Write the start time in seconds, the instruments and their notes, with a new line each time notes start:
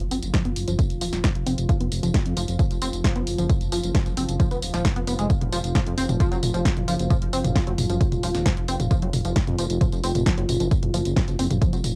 Already playing: ambient pad F3 F4
0.00 detuned saw bass F#1
0.11 detuned saw bass F#1, synth arpeggio sound C4, open hi-hat, tambourine
0.23 detuned saw bass F#1, closed hi-hat, tambourine
0.34 synth arpeggio sound F3, kick, snare, closed hi-hat, tambourine
0.45 detuned saw bass F#1, synth arpeggio sound B3, closed hi-hat
0.56 detuned saw bass F#1, open hi-hat, tambourine
0.68 detuned saw bass F#1, synth arpeggio sound F3, closed hi-hat, tambourine
0.79 kick, closed hi-hat, tambourine
0.90 detuned saw bass D#1, closed hi-hat, tambourine
1.01 detuned saw bass D#1, synth arpeggio sound F3, open hi-hat, tambourine
1.13 detuned saw bass D#1, snare, closed hi-hat, tambourine
1.24 synth arpeggio sound F3, kick, snare, closed hi-hat, tambourine
1.35 detuned saw bass F1, closed hi-hat
1.47 detuned saw bass F1, synth arpeggio sound C4, open hi-hat, tambourine
1.58 detuned saw bass F1, closed hi-hat, tambourine
1.69 synth arpeggio sound F3, kick, closed hi-hat, tambourine
1.80 detuned saw bass F1, synth arpeggio sound B3, closed hi-hat
1.92 detuned saw bass F1, open hi-hat, tambourine
2.03 detuned saw bass F1, synth arpeggio sound F3, closed hi-hat, tambourine
2.14 kick, snare, closed hi-hat, tambourine
2.26 detuned saw bass F2, closed hi-hat
2.37 detuned saw bass F1, synth arpeggio sound F3, open hi-hat, tambourine
2.48 detuned saw bass F1, closed hi-hat, tambourine
2.59 synth arpeggio sound F3, kick, closed hi-hat, tambourine
2.71 detuned saw bass F1, closed hi-hat, tambourine
2.82 detuned saw bass F1, synth arpeggio sound C4, open hi-hat, tambourine
2.93 detuned saw bass F1, closed hi-hat, tambourine
3.04 synth arpeggio sound F3, kick, snare, closed hi-hat, tambourine
3.16 detuned saw bass F#1, synth arpeggio sound B3, closed hi-hat
3.27 detuned saw bass F#1, open hi-hat, tambourine
3.38 detuned saw bass F#1, synth arpeggio sound F3, closed hi-hat, tambourine
3.50 kick, closed hi-hat, tambourine
3.61 detuned saw bass F#1, closed hi-hat, tambourine
3.72 detuned saw bass F#1, synth arpeggio sound F3, open hi-hat, tambourine
3.83 detuned saw bass F#1, closed hi-hat, tambourine
3.95 synth arpeggio sound F3, kick, snare, closed hi-hat, tambourine
4.06 detuned saw bass F#1, closed hi-hat, tambourine
4.17 detuned saw bass F#1, synth arpeggio sound C4, open hi-hat, tambourine
4.29 detuned saw bass F#1, closed hi-hat, tambourine
4.40 synth arpeggio sound F3, kick, closed hi-hat, tambourine
4.51 detuned saw bass D#1, synth arpeggio sound B3, closed hi-hat, tambourine
4.62 detuned saw bass D#1, open hi-hat, tambourine
4.74 detuned saw bass D#1, synth arpeggio sound F3, snare, closed hi-hat, tambourine
4.85 kick, snare, closed hi-hat, tambourine
4.96 detuned saw bass F1, synth arpeggio sound B3, closed hi-hat
5.07 detuned saw bass F1, synth arpeggio sound B3, open hi-hat, tambourine
5.19 detuned saw bass F1, synth arpeggio sound G#3, closed hi-hat, tambourine
5.30 kick, closed hi-hat, tambourine
5.41 detuned saw bass F1, closed hi-hat, mid tom
5.52 detuned saw bass F1, synth arpeggio sound F3, open hi-hat, tambourine
5.64 detuned saw bass F1, closed hi-hat, tambourine
5.75 synth arpeggio sound F3, kick, snare, closed hi-hat, mid tom, tambourine
5.86 detuned saw bass F2, closed hi-hat
5.98 detuned saw bass F1, synth arpeggio sound C4, open hi-hat, tambourine
6.09 detuned saw bass F1, closed hi-hat, mid tom, tambourine
6.20 synth arpeggio sound F3, kick, closed hi-hat, tambourine
6.32 detuned saw bass F1, synth arpeggio sound F#3, closed hi-hat, tambourine
6.43 detuned saw bass F1, mid tom, open hi-hat, tambourine
6.54 detuned saw bass F1, synth arpeggio sound F3, closed hi-hat, tambourine
6.65 kick, snare, closed hi-hat, tambourine
6.77 detuned saw bass F#1, closed hi-hat, mid tom
6.88 detuned saw bass F#1, synth arpeggio sound F3, open hi-hat, tambourine
6.99 detuned saw bass F#1, closed hi-hat, tambourine
7.10 synth arpeggio sound F3, kick, closed hi-hat, mid tom, tambourine
7.22 detuned saw bass F#1, closed hi-hat
7.33 detuned saw bass F#1, synth arpeggio sound C4, open hi-hat, tambourine
7.44 detuned saw bass F#1, closed hi-hat, mid tom, tambourine
7.55 synth arpeggio sound F3, kick, snare, closed hi-hat, tambourine
7.67 detuned saw bass F#1, synth arpeggio sound F#3, closed hi-hat
7.78 detuned saw bass F#1, mid tom, open hi-hat, tambourine
7.90 detuned saw bass F#1, synth arpeggio sound F3, closed hi-hat, tambourine
8.01 kick, closed hi-hat, tambourine
8.12 detuned saw bass D#1, closed hi-hat, mid tom, tambourine
8.23 detuned saw bass D#1, synth arpeggio sound F3, open hi-hat, tambourine
8.35 detuned saw bass D#1, snare, closed hi-hat, tambourine
8.46 synth arpeggio sound F3, kick, snare, closed hi-hat, mid tom, tambourine
8.57 detuned saw bass F1, closed hi-hat
8.68 detuned saw bass F1, synth arpeggio sound C4, open hi-hat, tambourine
8.80 detuned saw bass F1, closed hi-hat, mid tom, tambourine
8.91 synth arpeggio sound F3, kick, closed hi-hat, tambourine
9.02 detuned saw bass F1, synth arpeggio sound F#3, closed hi-hat
9.13 detuned saw bass F1, mid tom, open hi-hat, tambourine
9.25 detuned saw bass F1, synth arpeggio sound F3, closed hi-hat, tambourine
9.36 kick, snare, closed hi-hat, tambourine
9.47 detuned saw bass F2, closed hi-hat, mid tom
9.59 detuned saw bass F1, synth arpeggio sound F3, open hi-hat, tambourine
9.70 detuned saw bass F1, closed hi-hat, tambourine
9.81 synth arpeggio sound F3, kick, closed hi-hat, mid tom, tambourine
9.93 detuned saw bass F1, closed hi-hat, tambourine
10.04 detuned saw bass F1, synth arpeggio sound C4, open hi-hat, tambourine
10.15 detuned saw bass F1, closed hi-hat, mid tom, tambourine
10.26 synth arpeggio sound F3, kick, snare, closed hi-hat, tambourine
10.38 detuned saw bass F#1, synth arpeggio sound F#3, closed hi-hat
10.49 detuned saw bass F#1, mid tom, open hi-hat, tambourine
10.60 detuned saw bass F#1, synth arpeggio sound F3, closed hi-hat, tambourine
10.71 kick, closed hi-hat, tambourine
10.83 detuned saw bass F#1, closed hi-hat, mid tom
10.94 detuned saw bass F#1, synth arpeggio sound F3, open hi-hat, tambourine
11.05 detuned saw bass F#1, closed hi-hat, tambourine
11.16 synth arpeggio sound F3, kick, snare, closed hi-hat, mid tom, tambourine
11.28 detuned saw bass F#1, closed hi-hat, tambourine
11.39 detuned saw bass F#1, synth arpeggio sound C4, open hi-hat, tambourine
11.51 detuned saw bass F#1, closed hi-hat, mid tom, tambourine
11.62 synth arpeggio sound F3, kick, closed hi-hat, tambourine
11.73 detuned saw bass F1, synth arpeggio sound F#3, closed hi-hat, tambourine
11.84 detuned saw bass F1, mid tom, open hi-hat, tambourine